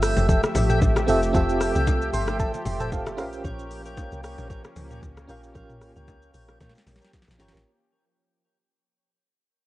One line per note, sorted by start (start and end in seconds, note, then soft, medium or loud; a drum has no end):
0.00 0.15 G1 medium
0.00 7.62 F3 medium
0.00 3.14 A3 medium
0.00 1.06 C4 medium
0.00 1.07 F4 medium
0.00 1.08 G4 medium
0.00 7.62 G4 medium
0.00 1.09 A4 medium
0.00 0.27 A4 medium
0.00 1.10 E5 loud
0.00 3.15 E5 medium
0.00 0.27 E5 medium
0.00 0.27 G5 medium
0.00 cross-stick loud
0.00 open hi-hat medium
0.00 shaker loud
0.17 0.41 F1 loud
0.17 high bongo medium
0.17 low bongo medium
0.17 shaker medium
0.29 0.42 A4 medium
0.29 0.42 E5 medium
0.29 0.42 G5 loud
0.29 kick loud
0.29 low conga medium
0.29 shaker medium
0.44 cross-stick loud
0.44 low bongo medium
0.44 shaker medium
0.55 0.80 A1 loud
0.55 open hi-hat medium
0.55 low bongo medium
0.55 low conga medium
0.55 shaker medium
0.69 0.80 A4 medium
0.69 0.80 E5 medium
0.69 0.80 G5 medium
0.69 mid tom medium
0.69 shaker medium
0.82 1.06 A1 loud
0.82 kick loud
0.82 high bongo medium
0.82 shaker medium
0.96 cross-stick medium
0.96 low bongo medium
0.96 shaker medium
1.06 1.32 F1 medium
1.06 1.29 C4 medium
1.06 1.29 F4 medium
1.06 1.30 G4 medium
1.06 1.21 A4 medium
1.06 1.30 A4 medium
1.06 1.21 E5 medium
1.06 1.30 E5 loud
1.06 1.21 G5 medium
1.06 open hi-hat soft
1.06 shaker medium
1.22 shaker medium
1.33 1.72 F1 loud
1.33 2.18 C4 medium
1.33 2.19 F4 medium
1.33 2.19 G4 medium
1.33 1.71 A4 loud
1.33 2.19 A4 medium
1.33 1.72 E5 medium
1.33 2.20 E5 loud
1.33 1.72 G5 loud
1.33 kick loud
1.33 low conga medium
1.33 shaker medium
1.49 shaker soft
1.60 cross-stick medium
1.60 open hi-hat medium
1.60 shaker medium
1.75 2.10 C2 medium
1.75 2.10 A4 medium
1.75 2.10 E5 medium
1.75 2.10 G5 medium
1.75 shaker medium
1.87 kick medium
1.87 high bongo medium
1.87 shaker medium
2.01 shaker soft
2.13 2.51 G1 medium
2.13 2.37 A4 medium
2.13 2.38 E5 medium
2.13 2.38 G5 medium
2.13 2.38 C6 medium
2.13 open hi-hat medium
2.13 shaker loud
2.27 cross-stick medium
2.27 high bongo medium
2.27 low bongo medium
2.27 shaker medium
2.39 2.52 A4 loud
2.39 2.52 E5 medium
2.39 2.53 G5 loud
2.39 2.64 A5 medium
2.39 kick loud
2.39 low conga medium
2.39 shaker medium
2.54 low bongo medium
2.54 shaker medium
2.65 3.20 F1 medium
2.65 2.80 E5 medium
2.65 2.90 G5 medium
2.65 2.80 C6 medium
2.65 open hi-hat medium
2.65 low bongo medium
2.65 low conga medium
2.65 shaker loud
2.80 2.91 A4 medium
2.80 2.92 C5 medium
2.80 2.91 E5 medium
2.80 2.91 G5 medium
2.80 2.92 A5 medium
2.80 mid tom medium
2.80 shaker medium
2.92 3.06 A4 medium
2.92 3.06 F5 medium
2.92 kick medium
2.92 high bongo medium
2.92 shaker medium
3.06 3.17 G4 medium
3.06 3.32 E5 medium
3.06 cross-stick loud
3.06 low bongo medium
3.06 shaker medium
3.17 3.43 A#1 loud
3.17 7.62 A#3 medium
3.17 4.02 C#4 medium
3.17 7.62 C#4 medium
3.17 4.03 F4 medium
3.17 4.03 G4 medium
3.17 4.04 A#4 medium
3.17 3.43 C5 medium
3.17 4.04 F5 loud
3.17 cross-stick loud
3.17 open hi-hat soft
3.17 shaker medium
3.33 shaker medium
3.44 4.08 A#1 loud
3.44 3.82 A#4 medium
3.44 3.82 C#5 medium
3.44 3.82 G5 loud
3.44 kick loud
3.44 low conga medium
3.44 shaker medium
3.59 shaker soft
3.71 open hi-hat medium
3.71 shaker medium
3.85 4.21 A#4 medium
3.85 4.21 C#5 medium
3.85 4.21 G5 medium
3.85 shaker medium
3.97 kick loud
3.97 high bongo medium
3.97 shaker medium
4.12 4.36 C2 medium
4.12 shaker soft
4.23 4.48 A#4 medium
4.23 4.48 C#5 medium
4.23 4.48 G5 medium
4.23 cross-stick loud
4.23 open hi-hat medium
4.23 shaker loud
4.38 4.62 A#1 medium
4.38 high bongo medium
4.38 low bongo medium
4.38 shaker medium
4.50 4.63 A#4 loud
4.50 4.63 C#5 medium
4.50 4.63 G5 loud
4.50 kick loud
4.50 low conga medium
4.50 shaker medium
4.64 cross-stick loud
4.64 low bongo medium
4.64 shaker medium
4.76 5.00 C#2 loud
4.76 open hi-hat medium
4.76 low bongo medium
4.76 low conga medium
4.76 shaker loud
4.90 5.01 A#4 medium
4.90 5.01 C#5 medium
4.90 5.01 G5 medium
4.90 mid tom medium
4.90 shaker medium
5.03 5.27 C#2 loud
5.03 kick medium
5.03 high bongo medium
5.03 shaker medium
5.17 cross-stick loud
5.17 low bongo medium
5.17 shaker medium
5.27 5.53 A#1 medium
5.27 5.50 C#4 medium
5.27 5.50 F4 medium
5.27 5.51 G4 medium
5.27 5.42 A#4 medium
5.27 5.51 A#4 medium
5.27 5.42 C#5 medium
5.27 5.51 F5 medium
5.27 5.42 G5 medium
5.27 open hi-hat soft
5.27 shaker medium
5.43 shaker medium
5.54 5.93 A#1 loud
5.54 6.39 C#4 medium
5.54 6.40 F4 medium
5.54 6.40 G4 medium
5.54 5.92 A#4 medium
5.54 6.41 A#4 medium
5.54 5.92 C#5 medium
5.54 6.41 F5 loud
5.54 5.93 G5 loud
5.54 kick loud
5.54 low conga medium
5.54 shaker medium
5.69 mid tom medium
5.69 shaker soft
5.81 cross-stick medium
5.81 open hi-hat medium
5.81 shaker medium
5.96 6.31 C#2 loud
5.96 6.31 A#4 medium
5.96 6.31 C#5 medium
5.96 6.32 G5 medium
5.96 shaker medium
6.08 kick loud
6.08 high bongo medium
6.08 shaker medium
6.22 shaker soft
6.34 6.58 A#1 loud
6.34 6.59 A#4 medium
6.34 6.59 C#5 medium
6.34 6.59 G5 medium
6.34 open hi-hat medium
6.34 shaker loud
6.49 cross-stick medium
6.49 high bongo medium
6.49 low bongo medium
6.49 shaker medium
6.60 6.74 A#2 loud
6.60 6.73 A#4 medium
6.60 6.73 C#5 medium
6.60 6.74 G5 loud
6.60 kick loud
6.60 snare medium
6.60 low conga medium
6.60 shaker medium
6.69 snare medium
6.75 snare medium
6.75 low bongo medium
6.75 shaker medium
6.87 7.00 A#1 loud
6.87 snare medium
6.87 open hi-hat medium
6.87 high bongo medium
6.87 low bongo medium
6.87 low conga medium
6.87 shaker medium
6.96 snare medium
7.01 7.12 A#4 medium
7.01 7.12 C#5 medium
7.01 7.12 G5 medium
7.01 snare medium
7.01 shaker medium
7.13 kick loud
7.13 snare medium
7.13 high bongo medium
7.13 shaker medium
7.22 snare medium
7.28 7.38 A#1 medium
7.28 snare loud
7.28 low bongo medium
7.28 shaker medium
7.38 7.53 G1 medium
7.38 7.60 C#4 medium
7.38 7.61 F4 medium
7.38 7.61 G4 medium
7.38 7.52 A#4 medium
7.38 7.62 A#4 medium
7.38 7.52 C#5 medium
7.38 7.62 C#5 medium
7.38 7.53 G5 medium
7.38 snare medium
7.38 open hi-hat soft
7.38 shaker medium
7.48 snare loud
7.54 7.65 A1 medium
7.54 snare loud
7.54 shaker medium